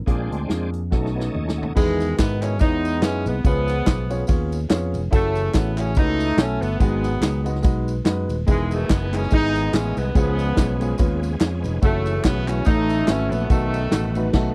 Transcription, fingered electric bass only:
0.07 0.28 A#1 medium
0.31 0.47 D2 medium
0.50 0.94 F2 medium
0.92 1.28 B1 medium
1.34 1.70 D#2 medium
1.76 2.12 E2 loud
2.19 2.61 G#2 loud
2.61 3.02 E2 loud
3.02 3.28 F#2 loud
3.26 3.42 C2 medium
3.45 3.80 C#2 loud
3.87 4.23 B1 medium
4.29 4.64 D#2 loud
4.71 4.95 F2 medium
4.94 5.10 F1 loud
5.12 5.48 F#1 loud
5.54 5.97 A1 loud
5.97 6.32 C#2 loud
6.37 6.58 B1 medium
6.61 6.77 G1 medium
6.80 7.16 G#1 loud
7.21 7.64 C#2 loud
7.64 8.00 B1 loud
8.05 8.26 F#2 medium
8.29 8.45 D#1 loud
8.48 8.84 E1 loud
8.90 9.26 F#1 loud
9.32 9.68 G#1 loud
9.73 9.93 A1 medium
9.97 10.13 C2 loud
10.15 10.51 C#2 loud
10.58 10.93 B1 medium
10.99 11.35 D#2 loud
11.41 11.65 F2 medium
11.64 11.80 F1 loud
11.82 12.18 F#1 loud
12.25 12.60 B1 loud
12.66 13.02 A1 loud
13.08 13.28 G#1 medium
13.32 13.47 A#1 medium
13.50 13.86 B1 loud
13.92 14.33 A1 loud
14.34 14.50 B1 loud

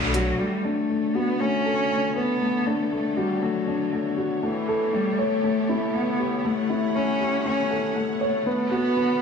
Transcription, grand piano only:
0.00 0.39 A3 medium
0.00 0.41 D4 medium
0.00 0.14 F#4 medium
0.00 0.41 C#5 medium
0.14 0.38 F#4 medium
0.39 0.63 A3 medium
0.65 0.89 D4 medium
0.90 1.14 A3 medium
1.15 1.39 F#4 medium
1.40 1.64 A3 medium
1.66 1.80 A4 medium
1.91 2.05 A3 medium
2.16 2.40 B4 medium
2.41 2.65 A3 medium
2.67 2.90 D4 medium
2.92 3.06 A3 medium
3.17 3.41 F#4 medium
3.42 3.66 A3 medium
3.67 3.91 D4 medium
3.93 4.16 A3 medium
4.18 4.42 F#4 medium
4.43 4.67 A3 medium
4.69 4.83 A4 medium
4.93 5.08 A3 medium
5.19 5.43 C#5 medium
5.44 5.68 A3 medium
5.69 5.93 E4 medium
5.94 6.09 A3 medium
6.20 6.43 G4 medium
6.45 6.69 A3 medium
6.70 6.94 E4 medium
6.95 7.19 A3 medium
7.20 7.44 G4 medium
7.45 7.69 A3 medium
7.71 7.85 A4 medium
7.96 8.10 A3 medium
8.21 8.45 C#5 medium
8.46 8.70 B3 medium
8.72 8.95 F#4 medium
8.97 9.11 B3 medium

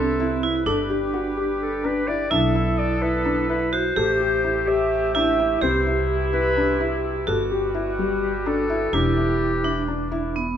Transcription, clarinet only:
0.00 0.43 A4 loud
1.62 1.86 A4 loud
1.85 2.10 B4 loud
2.08 2.32 D5 loud
2.31 2.80 E5 loud
2.79 3.04 D5 loud
3.02 3.50 B4 loud
3.50 3.74 B4 loud
3.73 4.70 C5 loud
4.68 5.14 E5 loud
5.15 5.63 E5 loud
5.62 6.06 C5 medium
6.33 7.00 B4 loud
8.23 8.49 G4 loud
8.47 8.96 A4 loud
8.94 10.12 G4 loud

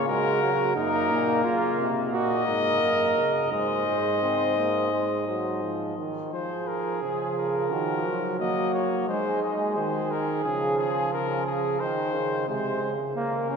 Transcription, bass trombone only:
0.00 0.74 C#3 medium
0.76 1.12 F#2 medium
1.10 1.44 A#2 medium
1.44 1.80 C#3 medium
1.79 2.15 C3 medium
2.13 2.47 A#2 medium
2.48 2.81 G#2 medium
2.82 3.16 F#2 medium
3.17 3.51 C#3 medium
3.51 5.94 G#2 medium
7.03 7.73 C#3 medium
7.72 8.05 D#3 medium
8.05 9.06 F#3 medium
9.08 9.78 G#3 medium
9.77 10.44 D#3 medium
10.45 11.11 C#3 medium
11.13 11.79 C#3 medium
11.81 12.15 D#3 medium
12.14 12.47 C#3 medium
12.48 12.81 C3 medium
12.82 13.55 C#3 medium

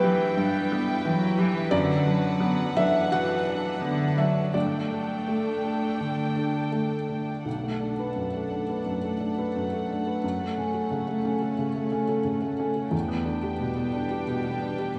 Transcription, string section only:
0.00 1.72 E4 medium
0.00 4.55 B4 medium
0.00 1.72 G5 medium
1.71 7.45 D4 medium
1.71 4.54 F#5 medium
4.54 7.45 A4 medium
4.54 7.46 G5 medium
7.46 10.19 D4 soft
7.46 12.89 A4 soft
7.46 12.90 F#5 soft
10.22 12.93 C#4 soft
12.93 14.99 D4 soft
12.93 14.99 B4 soft
12.93 14.99 G5 soft

